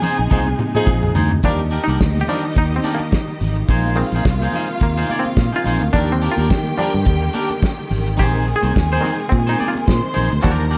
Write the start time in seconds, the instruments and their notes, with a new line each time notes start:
Already playing: string section C3 G#3 D#4, clav A#3 D#4 G#4 C5, violin section G#4 G#5
0.02 clean electric guitar D#4 G#4 C5, high tom, low conga
0.19 fingered electric bass A#1, muted clean electric guitar stroke
0.31 fingered electric bass C2, horn section F3 D#4 G#4, clean electric guitar D#4 G#4 C5, kick, mid tom, high conga
0.47 muted clean electric guitar stroke, mid tom, muted conga
0.59 muted clean electric guitar stroke, mid tom, high conga
0.75 horn section F3 D#4 G#4, clean electric guitar D#4 G#4 C5, mid tom, high conga
0.86 fingered electric bass A#1, kick, mid tom, muted conga
1.03 muted clean electric guitar stroke, floor tom, muted conga
1.14 fingered electric bass D2, clean electric guitar D#4 G#4 C5, floor tom, low conga
1.31 muted clean electric guitar stroke, floor tom
1.43 fingered electric bass D#2, string section D#3 G3 G4, clav F3 G3 A#3 D4, clean electric guitar D4 G4 A#4, violin section D#4 D#5, kick, closed hi-hat, muted conga, low conga
1.58 muted conga
1.71 clean electric guitar D4 G4 A#4, open hi-hat
1.84 clav D#4, closed hi-hat, high conga
1.88 fingered electric bass C2, clean electric guitar D4 G4 A#4
1.99 fingered electric bass D2, kick, snare, closed hi-hat, muted conga
2.14 muted clean electric guitar stroke, snare, muted conga, high conga
2.21 clav G4
2.27 clav F3 G3 D4, clean electric guitar D4 G4 A#4, open hi-hat, low conga
2.43 muted clean electric guitar stroke, closed hi-hat
2.55 fingered electric bass D#2, clav D#4, kick, closed hi-hat, muted conga
2.73 clav C4, muted clean electric guitar stroke
2.84 clean electric guitar D4 G4 A#4, open hi-hat, high conga
2.95 clav A#3
3.00 muted clean electric guitar stroke, closed hi-hat, high conga
3.12 muted clean electric guitar stroke, kick, snare, closed hi-hat, muted conga
3.28 muted clean electric guitar stroke, muted conga
3.40 fingered electric bass G#1, open hi-hat, low conga
3.56 muted clean electric guitar stroke, closed hi-hat
3.68 fingered electric bass A#1, string section C3 D#3 G#3, clean electric guitar D#4 G#4 C5, violin section F4 F5, kick, closed hi-hat, muted conga, low conga
3.85 muted conga
3.95 clav D#3 G#3 C4, muted clean electric guitar stroke, open hi-hat
4.12 fingered electric bass A#1, clean electric guitar G#4 C5, closed hi-hat, high conga
4.16 clean electric guitar D#4
4.25 fingered electric bass C2, kick, snare, closed hi-hat, muted conga
4.40 clean electric guitar D#4 G#4 C5, snare, muted conga, high conga
4.53 clean electric guitar D#4 G#4 C5, open hi-hat, low conga
4.68 muted clean electric guitar stroke, closed hi-hat
4.80 fingered electric bass D#2, clav A#3, muted clean electric guitar stroke, kick, closed hi-hat, muted conga
4.97 clean electric guitar D#4 G#4 C5, muted conga
5.10 clean electric guitar D#4 G#4 D5, open hi-hat, high conga
5.19 clav C4
5.24 muted clean electric guitar stroke, closed hi-hat, high conga
5.37 fingered electric bass A#2, muted clean electric guitar stroke, kick, snare, closed hi-hat
5.52 clean electric guitar D#4 G#4 C5, clav F4, muted conga
5.64 fingered electric bass A#1, clean electric guitar D#4 G#4 C5, open hi-hat, low conga
5.81 fingered electric bass D2, muted clean electric guitar stroke, closed hi-hat
5.93 fingered electric bass D#2, string section D3 G3, clav D4, clean electric guitar D4 G4 A#4, violin section G4 G5, kick, closed hi-hat, muted conga, low conga
6.12 clav C4
6.21 clean electric guitar D4 G4 A#4, open hi-hat
6.31 clav F4
6.37 fingered electric bass D#2, clean electric guitar D4 G4 A#4, closed hi-hat, high conga
6.50 fingered electric bass D#3, kick, snare, closed hi-hat
6.64 muted clean electric guitar stroke, muted conga, high conga
6.78 clav F3 G3 D4, clean electric guitar D4 G4 A#4, open hi-hat, low conga
6.93 fingered electric bass G2, muted clean electric guitar stroke, closed hi-hat
7.05 fingered electric bass D#2, kick, closed hi-hat, muted conga
7.22 muted clean electric guitar stroke
7.34 clean electric guitar D4 G4 A#4, open hi-hat, high conga
7.50 muted clean electric guitar stroke, closed hi-hat, high conga
7.62 muted clean electric guitar stroke, kick, snare, closed hi-hat
7.78 muted clean electric guitar stroke, muted conga
7.90 fingered electric bass G#1, open hi-hat, low conga
8.07 muted clean electric guitar stroke, closed hi-hat
8.17 fingered electric bass A#1, string section C3 G#3, clean electric guitar D#4 G#4 C5, clav G4, violin section G#4 G#5, kick, closed hi-hat, muted conga, low conga
8.47 muted clean electric guitar stroke, open hi-hat
8.56 clav G#4
8.62 fingered electric bass C2, clean electric guitar D#4 G#4 C5, closed hi-hat, high conga
8.75 fingered electric bass D#2, muted clean electric guitar stroke, kick, snare, closed hi-hat, muted conga
8.90 clean electric guitar D#4 G#4 C5, clav C5, high conga
9.01 clav D#3 G#3 C4, clean electric guitar D#4 G#4, open hi-hat, low conga
9.05 clean electric guitar C5
9.20 muted clean electric guitar stroke, closed hi-hat
9.29 fingered electric bass A#2, clav C4, muted clean electric guitar stroke, kick, closed hi-hat, muted conga
9.47 clean electric guitar D#4 G#4 C5, clav D#4, muted conga
9.58 clean electric guitar D#4 G#4 D5, open hi-hat, high conga
9.68 clav F4
9.74 muted clean electric guitar stroke, closed hi-hat, high conga
9.87 fingered electric bass A#2, violin section C5 C6, muted clean electric guitar stroke, kick, snare, closed hi-hat, muted conga
10.03 muted clean electric guitar stroke, muted conga
10.14 fingered electric bass A#1, clean electric guitar D#4 G#4 C5, open hi-hat, low conga
10.30 fingered electric bass D2, muted clean electric guitar stroke, closed hi-hat
10.42 fingered electric bass D#2, string section D3 G3, clav F3 G3 D4, clean electric guitar D4 G4 A#4, violin section A#4 A#5, kick, closed hi-hat
10.46 muted conga, low conga
10.61 muted conga
10.70 clean electric guitar D4 G4 A#4, open hi-hat